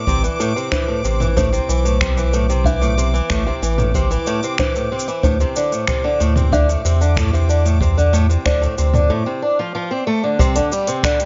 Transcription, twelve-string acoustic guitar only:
0.07 0.22 C3 medium
0.23 0.38 E3 medium
0.40 0.55 A2 loud
0.56 0.70 C3 medium
0.72 0.87 E3 medium
0.88 1.03 A2 medium
1.04 1.19 C3 medium
1.20 1.35 E3 medium
1.37 1.52 A2 medium
1.52 1.67 C3 medium
1.69 1.83 E3 medium
1.85 1.99 A2 medium
2.01 2.16 C3 medium
2.17 2.32 E3 medium
2.33 2.49 A2 medium
2.49 2.64 C3 medium
2.65 2.80 E3 medium
2.81 2.96 A2 medium
2.97 3.12 C3 medium
3.14 3.28 E3 medium
3.30 3.45 A2 medium
3.46 3.61 C3 medium
3.62 3.77 E3 medium
3.78 3.93 A2 medium
3.95 4.09 C3 medium
4.11 4.25 E3 medium
4.27 4.42 A2 loud
4.43 4.58 C3 medium
4.60 4.74 E3 medium
4.76 4.90 A2 medium
4.92 5.06 C3 medium
5.08 5.22 E3 medium
5.24 5.39 A2 medium
5.40 5.54 C3 medium
5.56 5.70 D3 medium
5.72 5.86 A2 medium
5.88 6.03 C3 medium
6.04 6.19 D3 medium
6.20 6.36 A2 medium
6.37 6.51 C3 medium
6.53 6.67 D3 medium
6.69 6.83 A2 medium
6.85 6.99 C3 medium
7.01 7.15 D3 medium
7.17 7.32 A2 loud
7.33 7.48 C3 medium
7.49 7.64 D3 medium
7.65 7.80 A2 medium
7.81 7.96 C3 medium
7.97 8.12 D3 medium
8.13 8.29 A2 loud
8.29 8.44 C3 medium
8.45 8.60 D3 medium
8.62 8.76 A2 medium
8.78 8.93 C3 medium
8.94 9.09 D3 medium
9.10 9.26 A2 loud
9.26 9.41 C3 medium
9.42 9.57 D4 medium
9.59 9.74 F3 medium
9.75 9.89 F3 medium
9.91 10.06 C4 medium
10.07 10.22 A3 loud
10.24 10.39 D3 medium
10.39 10.55 C3 loud
10.56 10.70 D3 medium
10.72 10.86 G3 medium
10.88 11.02 C3 medium
11.04 11.19 D3 medium
11.20 11.25 G3 medium

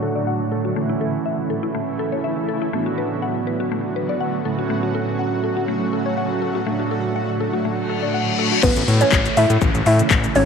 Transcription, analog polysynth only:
0.00 0.72 A2 medium
0.00 0.72 F#3 medium
0.00 0.72 A3 medium
0.00 0.73 D4 medium
0.00 0.73 F#4 medium
0.76 2.69 E3 medium
0.76 2.69 A3 medium
0.76 2.69 C#4 medium
0.76 2.69 E4 medium
2.73 4.42 A2 medium
2.73 4.42 F#3 medium
2.73 4.42 B3 medium
2.73 4.42 D4 medium
2.73 4.42 F#4 medium
4.45 6.62 A2 medium
4.45 6.62 F#3 medium
4.45 6.63 A3 medium
4.45 6.63 C#4 medium
4.45 6.63 F#4 medium
6.66 8.59 A2 medium
6.66 8.59 F#3 medium
6.66 8.59 A3 medium
6.66 8.59 D4 medium
6.66 8.60 F#4 medium
8.63 8.80 C#3 medium
8.63 8.80 E3 medium
8.63 8.80 A3 medium
8.63 8.81 E4 medium
9.01 9.11 C#3 medium
9.01 9.11 E3 medium
9.01 9.11 A3 medium
9.01 9.12 C#4 medium
9.01 9.12 E4 medium
9.26 9.42 C#3 medium
9.26 9.42 E3 medium
9.26 9.42 A3 medium
9.26 9.42 C#4 medium
9.26 9.42 E4 medium
9.62 9.79 C#3 medium
9.62 9.79 E3 medium
9.62 9.79 A3 medium
9.62 9.79 C#4 medium
9.62 9.79 E4 medium
9.99 10.10 C#3 medium
9.99 10.10 E3 medium
9.99 10.10 A3 medium
9.99 10.10 C#4 medium
9.99 10.10 E4 medium
10.24 10.40 C#3 medium
10.24 10.40 E3 medium
10.24 10.40 A3 medium
10.24 10.40 C#4 medium
10.24 10.40 E4 medium

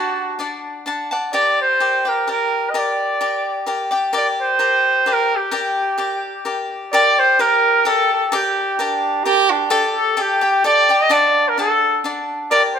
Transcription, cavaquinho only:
0.00 0.38 D4 medium
0.00 0.39 D5 medium
0.00 0.39 F#5 medium
0.00 0.40 A5 medium
0.39 0.85 D4 medium
0.39 0.86 D5 medium
0.39 0.86 F#5 medium
0.39 0.86 A5 soft
0.86 1.11 D4 medium
0.86 1.11 D5 soft
0.86 1.11 F#5 medium
0.86 1.10 A5 medium
1.11 1.33 D5 soft
1.11 1.34 F#5 soft
1.11 1.34 A5 medium
1.33 1.80 G4 medium
1.33 1.80 A#4 medium
1.33 1.81 D5 medium
1.33 1.81 G5 medium
1.80 2.05 G4 medium
1.80 2.06 A#4 soft
1.80 2.04 D5 medium
1.80 2.04 G5 soft
2.05 2.27 G4 soft
2.05 2.27 D5 soft
2.05 2.27 G5 soft
2.27 2.75 G4 soft
2.27 2.74 A#4 soft
2.27 2.75 D5 soft
2.27 2.74 G5 soft
2.74 3.20 G4 medium
2.74 3.20 A#4 medium
2.74 3.21 D5 medium
2.74 3.21 G5 medium
3.21 3.67 G4 medium
3.21 3.66 A#4 medium
3.21 3.67 D5 medium
3.21 3.67 G5 medium
3.66 3.92 G4 medium
3.66 3.91 A#4 soft
3.66 3.90 D5 medium
3.66 3.91 G5 medium
3.91 4.12 G4 soft
3.91 4.13 D5 soft
3.91 4.12 G5 medium
4.13 4.59 G4 medium
4.13 4.59 A#4 medium
4.13 4.60 D5 medium
4.13 4.60 G5 medium
4.59 5.06 G4 medium
4.59 5.06 A#4 medium
4.59 5.07 D5 medium
4.59 5.07 G5 medium
5.06 5.51 G4 medium
5.06 5.51 A#4 soft
5.06 5.53 D5 medium
5.06 5.52 G5 soft
5.51 5.98 G4 medium
5.51 5.97 A#4 medium
5.51 5.99 D5 medium
5.51 5.98 G5 medium
5.98 6.45 G4 medium
5.98 6.45 A#4 medium
5.98 6.46 D5 medium
5.98 6.46 G5 medium
6.45 6.93 G4 medium
6.45 6.92 A#4 medium
6.45 6.94 D5 medium
6.45 6.94 G5 medium
6.93 7.39 G4 medium
6.93 7.38 A#4 medium
6.93 7.40 D5 medium
6.93 7.40 G5 medium
7.39 7.86 G4 medium
7.39 7.84 A#4 medium
7.39 7.86 D5 medium
7.39 7.86 G5 medium
7.85 8.32 G4 medium
7.85 8.31 A#4 medium
7.85 8.33 D5 medium
7.85 8.33 G5 medium
8.32 8.79 G4 medium
8.32 8.78 A#4 medium
8.32 8.80 D5 medium
8.32 8.80 G5 medium
8.79 9.25 G4 medium
8.79 9.24 A#4 medium
8.79 9.27 D5 medium
8.79 9.25 G5 medium
9.25 9.69 G4 medium
9.25 9.70 A#4 medium
9.25 9.71 D5 medium
9.25 9.70 G5 medium
9.70 10.16 G4 medium
9.70 10.16 A4 medium
9.70 10.17 D5 loud
9.70 10.16 G5 medium
10.17 10.42 G4 medium
10.17 10.42 A4 medium
10.17 10.40 D5 medium
10.17 10.41 G5 medium
10.41 10.63 G4 soft
10.41 10.64 D5 medium
10.41 10.64 G5 soft
10.64 10.89 G4 medium
10.64 10.89 A4 medium
10.64 10.88 D5 medium
10.64 10.89 G5 medium
10.89 11.10 G4 soft
10.89 11.09 D5 medium
10.89 11.10 G5 soft
11.09 11.57 D4 medium
11.09 11.58 D5 medium
11.09 11.58 F#5 medium
11.09 11.58 A5 medium
11.58 12.04 D4 medium
11.58 12.05 D5 medium
11.58 12.04 F#5 medium
11.58 12.04 A5 medium
12.04 12.51 D4 medium
12.04 12.51 D5 medium
12.04 12.51 F#5 soft
12.04 12.52 A5 medium
12.51 12.79 G4 medium
12.51 12.79 A#4 medium
12.51 12.79 D5 medium
12.51 12.79 G5 medium

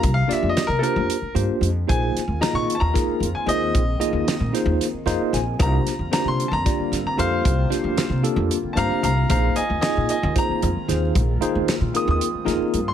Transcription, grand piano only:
0.00 0.12 A#5 medium
0.14 0.30 F5 medium
0.32 0.48 E5 medium
0.49 0.66 D#5 medium
0.67 0.82 A#4 medium
0.79 0.82 A4 medium
0.83 1.34 A#4 medium
1.89 2.40 G#5 medium
2.42 2.54 A#5 medium
2.55 2.81 C#6 medium
2.75 2.79 A5 medium
2.80 3.32 A#5 medium
3.35 3.47 G#5 medium
3.49 4.51 D#5 loud
5.62 6.12 A#5 loud
6.13 6.25 A#5 loud
6.28 6.53 C6 medium
6.48 6.52 A5 medium
6.53 7.04 A#5 medium
7.07 7.18 A#5 medium
7.19 8.20 C5 medium
7.19 8.22 F5 loud
8.73 8.76 A5 medium
8.77 9.02 F5 medium
8.77 9.03 A#5 loud
9.03 9.28 F5 medium
9.03 9.30 A#5 loud
9.30 9.54 F5 medium
9.30 9.56 A#5 medium
9.56 9.80 D#5 medium
9.56 9.81 G#5 medium
9.81 10.06 D#5 medium
9.81 10.08 G#5 medium
10.10 10.34 D#5 medium
10.10 10.35 G#5 medium
10.38 11.39 A#5 medium
11.96 12.07 D#6 medium
12.11 12.85 D#6 medium
12.88 12.94 C6 medium

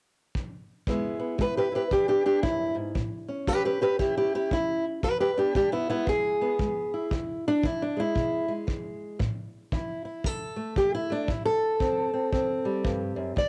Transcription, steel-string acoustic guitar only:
0.87 1.35 E2 medium
0.87 1.37 G#3 soft
0.87 1.18 B3 soft
0.87 1.72 E4 soft
1.20 2.93 B3 soft
1.38 1.87 G#3 medium
1.38 1.57 B4 medium
1.57 1.66 G4 medium
1.57 1.75 B4 medium
1.72 1.91 E4 soft
1.72 1.82 G4 medium
1.72 1.92 B4 medium
1.91 2.39 E2 medium
1.91 2.07 D4 medium
1.91 2.08 G4 medium
2.08 2.25 D4 medium
2.08 2.25 G4 medium
2.26 2.43 D4 medium
2.26 2.43 G4 medium
2.43 2.75 F#2 medium
2.43 2.75 E4 medium
2.75 2.95 G#2 medium
2.95 3.43 A2 medium
3.29 3.80 C#4 soft
3.48 3.96 A3 medium
3.48 3.64 G4 medium
3.48 3.65 B4 medium
3.65 3.81 G4 medium
3.65 3.81 B4 medium
3.81 5.02 C#4 soft
3.81 3.98 G4 medium
3.81 3.99 B4 medium
3.99 4.48 E2 medium
3.99 4.16 E4 medium
3.99 4.17 G4 medium
4.18 4.34 E4 medium
4.18 4.34 G4 medium
4.35 4.52 E4 medium
4.35 4.52 G4 medium
4.52 5.00 A3 medium
4.52 4.84 E4 medium
5.03 5.51 E2 medium
5.03 5.09 G4 medium
5.03 5.20 B4 loud
5.20 5.30 G4 medium
5.20 5.38 B4 medium
5.37 5.71 B3 soft
5.37 5.54 D4 medium
5.37 5.55 G4 medium
5.55 5.88 G#3 medium
5.55 5.72 D4 medium
5.55 5.72 G4 medium
5.72 5.88 B3 medium
5.72 5.89 E4 medium
5.89 6.59 G#3 soft
5.89 6.07 B3 medium
5.89 6.08 E4 loud
6.08 6.56 E2 medium
6.08 7.12 G#4 loud
6.41 7.10 B3 soft
6.60 7.08 G#3 medium
6.94 7.47 E4 soft
7.13 7.60 E2 medium
7.48 7.65 D4 loud
7.63 8.12 E3 medium
7.63 7.82 E4 medium
7.82 7.99 D4 medium
7.97 8.47 G#3 soft
7.97 8.51 E4 loud
8.15 8.64 B2 medium
8.48 9.18 G#3 soft
8.67 9.16 E3 medium
9.19 9.68 A2 medium
9.72 10.21 E3 medium
9.72 10.05 E4 soft
10.05 10.26 E4 soft
10.24 10.73 E2 medium
10.24 10.77 A4 loud
10.56 11.09 A3 soft
10.76 11.25 E3 medium
10.76 10.94 G4 medium
10.95 11.12 E4 loud
11.10 11.27 A3 soft
11.10 11.29 D4 loud
11.28 11.77 A2 medium
11.28 11.45 E4 medium
11.46 13.02 A4 loud
11.80 12.29 E3 medium
11.80 12.12 C4 soft
12.14 12.32 C4 soft
12.32 12.81 E2 medium
12.32 13.35 C4 medium
12.65 13.37 G3 soft
12.84 13.16 G2 medium
13.16 13.36 F#2 medium
13.36 13.49 E2 medium
13.36 13.49 D5 loud

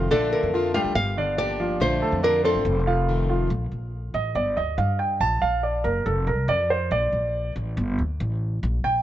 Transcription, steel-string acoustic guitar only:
0.00 0.10 C4 medium
0.00 0.10 F4 medium
0.11 0.52 D3 medium
0.11 0.53 A3 medium
0.11 0.53 D4 medium
0.11 0.53 F4 medium
0.53 0.74 D3 medium
0.53 0.74 A3 medium
0.53 0.74 D4 medium
0.53 0.73 F4 medium
0.74 0.95 A3 medium
0.74 0.95 D4 medium
0.74 0.95 F4 medium
0.96 muted steel-string acoustic guitar stroke medium
1.38 1.79 F3 soft
1.38 1.80 A#3 medium
1.38 1.80 D4 medium
1.38 1.80 G4 medium
1.80 2.22 D3 medium
1.80 2.22 A3 medium
1.80 2.22 D4 medium
1.80 2.23 F4 medium
2.23 2.43 D3 medium
2.23 2.44 A3 medium
2.23 2.44 D4 medium
2.23 2.43 F4 medium
2.44 2.65 A3 medium
2.44 2.65 D4 medium
2.44 2.65 F4 medium
2.66 muted steel-string acoustic guitar stroke medium
3.09 3.50 D#3 medium
3.09 3.50 A3 medium
3.09 3.50 C4 medium
3.09 3.51 F4 medium

